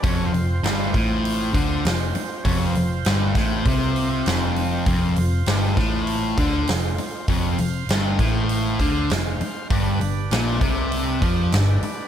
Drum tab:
HH |oooooooo|oooooooo|oooooooo|oooooooo|
SD |--o---o-|--oo--o-|--oo--o-|--o---o-|
BD |o--o-o--|o--oo---|o--o-o--|o--o-o--|

HH |oooooooo|
SD |--o---o-|
BD |o--o-o--|